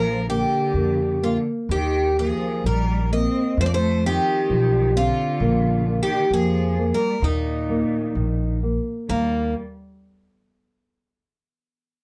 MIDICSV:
0, 0, Header, 1, 5, 480
1, 0, Start_track
1, 0, Key_signature, -3, "major"
1, 0, Tempo, 944882
1, 861, Time_signature, 2, 2, 24, 8
1, 1820, Tempo, 911854
1, 3740, Tempo, 927357
1, 6227, End_track
2, 0, Start_track
2, 0, Title_t, "Twelve-string acoustic guitar"
2, 0, Program_c, 0, 25
2, 0, Note_on_c, 0, 70, 90
2, 128, Note_off_c, 0, 70, 0
2, 151, Note_on_c, 0, 67, 77
2, 628, Note_on_c, 0, 65, 69
2, 639, Note_off_c, 0, 67, 0
2, 692, Note_off_c, 0, 65, 0
2, 870, Note_on_c, 0, 67, 81
2, 1111, Note_off_c, 0, 67, 0
2, 1113, Note_on_c, 0, 68, 75
2, 1351, Note_off_c, 0, 68, 0
2, 1353, Note_on_c, 0, 70, 69
2, 1587, Note_off_c, 0, 70, 0
2, 1589, Note_on_c, 0, 75, 73
2, 1831, Note_off_c, 0, 75, 0
2, 1833, Note_on_c, 0, 72, 98
2, 1858, Note_off_c, 0, 72, 0
2, 1861, Note_on_c, 0, 74, 82
2, 1896, Note_off_c, 0, 74, 0
2, 1904, Note_on_c, 0, 72, 91
2, 2058, Note_off_c, 0, 72, 0
2, 2073, Note_on_c, 0, 67, 86
2, 2547, Note_off_c, 0, 67, 0
2, 2550, Note_on_c, 0, 65, 79
2, 3104, Note_off_c, 0, 65, 0
2, 3107, Note_on_c, 0, 67, 86
2, 3267, Note_off_c, 0, 67, 0
2, 3269, Note_on_c, 0, 68, 71
2, 3589, Note_on_c, 0, 70, 78
2, 3595, Note_off_c, 0, 68, 0
2, 3745, Note_on_c, 0, 63, 73
2, 3749, Note_off_c, 0, 70, 0
2, 4444, Note_off_c, 0, 63, 0
2, 4705, Note_on_c, 0, 58, 79
2, 4932, Note_off_c, 0, 58, 0
2, 6227, End_track
3, 0, Start_track
3, 0, Title_t, "Nylon-string guitar"
3, 0, Program_c, 1, 24
3, 0, Note_on_c, 1, 58, 56
3, 141, Note_off_c, 1, 58, 0
3, 147, Note_on_c, 1, 58, 50
3, 374, Note_off_c, 1, 58, 0
3, 383, Note_on_c, 1, 58, 44
3, 614, Note_off_c, 1, 58, 0
3, 624, Note_on_c, 1, 58, 53
3, 857, Note_off_c, 1, 58, 0
3, 868, Note_on_c, 1, 51, 55
3, 1114, Note_on_c, 1, 58, 48
3, 1342, Note_off_c, 1, 58, 0
3, 1345, Note_off_c, 1, 51, 0
3, 1351, Note_on_c, 1, 51, 51
3, 1579, Note_off_c, 1, 51, 0
3, 1583, Note_on_c, 1, 58, 52
3, 1814, Note_off_c, 1, 58, 0
3, 1825, Note_on_c, 1, 53, 61
3, 2071, Note_on_c, 1, 60, 56
3, 2300, Note_off_c, 1, 53, 0
3, 2301, Note_off_c, 1, 60, 0
3, 2306, Note_on_c, 1, 53, 50
3, 2537, Note_off_c, 1, 53, 0
3, 2544, Note_on_c, 1, 60, 57
3, 2775, Note_off_c, 1, 60, 0
3, 2786, Note_on_c, 1, 58, 61
3, 3021, Note_off_c, 1, 58, 0
3, 3027, Note_on_c, 1, 58, 53
3, 3257, Note_off_c, 1, 58, 0
3, 3264, Note_on_c, 1, 58, 56
3, 3495, Note_off_c, 1, 58, 0
3, 3505, Note_on_c, 1, 58, 55
3, 3736, Note_off_c, 1, 58, 0
3, 3741, Note_on_c, 1, 51, 60
3, 3981, Note_on_c, 1, 58, 49
3, 4212, Note_off_c, 1, 51, 0
3, 4214, Note_off_c, 1, 58, 0
3, 4218, Note_on_c, 1, 51, 53
3, 4455, Note_off_c, 1, 51, 0
3, 4464, Note_on_c, 1, 58, 50
3, 4701, Note_off_c, 1, 58, 0
3, 4701, Note_on_c, 1, 51, 49
3, 4713, Note_on_c, 1, 58, 54
3, 4930, Note_off_c, 1, 51, 0
3, 4937, Note_off_c, 1, 58, 0
3, 6227, End_track
4, 0, Start_track
4, 0, Title_t, "Cello"
4, 0, Program_c, 2, 42
4, 0, Note_on_c, 2, 53, 74
4, 130, Note_off_c, 2, 53, 0
4, 154, Note_on_c, 2, 50, 69
4, 605, Note_off_c, 2, 50, 0
4, 630, Note_on_c, 2, 50, 55
4, 731, Note_off_c, 2, 50, 0
4, 874, Note_on_c, 2, 51, 71
4, 1094, Note_off_c, 2, 51, 0
4, 1115, Note_on_c, 2, 53, 67
4, 1333, Note_off_c, 2, 53, 0
4, 1355, Note_on_c, 2, 55, 72
4, 1572, Note_off_c, 2, 55, 0
4, 1594, Note_on_c, 2, 60, 73
4, 1810, Note_off_c, 2, 60, 0
4, 1828, Note_on_c, 2, 57, 79
4, 1854, Note_off_c, 2, 57, 0
4, 1858, Note_on_c, 2, 58, 67
4, 1891, Note_off_c, 2, 58, 0
4, 1907, Note_on_c, 2, 57, 80
4, 2060, Note_off_c, 2, 57, 0
4, 2075, Note_on_c, 2, 51, 79
4, 2528, Note_off_c, 2, 51, 0
4, 2556, Note_on_c, 2, 50, 76
4, 3085, Note_off_c, 2, 50, 0
4, 3108, Note_on_c, 2, 51, 71
4, 3253, Note_off_c, 2, 51, 0
4, 3266, Note_on_c, 2, 53, 74
4, 3563, Note_off_c, 2, 53, 0
4, 3587, Note_on_c, 2, 55, 69
4, 3733, Note_off_c, 2, 55, 0
4, 3748, Note_on_c, 2, 46, 73
4, 4446, Note_off_c, 2, 46, 0
4, 4704, Note_on_c, 2, 55, 62
4, 4932, Note_off_c, 2, 55, 0
4, 6227, End_track
5, 0, Start_track
5, 0, Title_t, "Upright bass"
5, 0, Program_c, 3, 32
5, 0, Note_on_c, 3, 34, 98
5, 211, Note_off_c, 3, 34, 0
5, 374, Note_on_c, 3, 41, 73
5, 690, Note_off_c, 3, 41, 0
5, 859, Note_on_c, 3, 39, 89
5, 1173, Note_off_c, 3, 39, 0
5, 1341, Note_on_c, 3, 34, 78
5, 1652, Note_off_c, 3, 34, 0
5, 1815, Note_on_c, 3, 41, 93
5, 2132, Note_off_c, 3, 41, 0
5, 2302, Note_on_c, 3, 35, 86
5, 2613, Note_off_c, 3, 35, 0
5, 2777, Note_on_c, 3, 34, 93
5, 3090, Note_off_c, 3, 34, 0
5, 3254, Note_on_c, 3, 41, 90
5, 3568, Note_off_c, 3, 41, 0
5, 3734, Note_on_c, 3, 39, 97
5, 4047, Note_off_c, 3, 39, 0
5, 4217, Note_on_c, 3, 34, 81
5, 4535, Note_off_c, 3, 34, 0
5, 4702, Note_on_c, 3, 39, 86
5, 4931, Note_off_c, 3, 39, 0
5, 6227, End_track
0, 0, End_of_file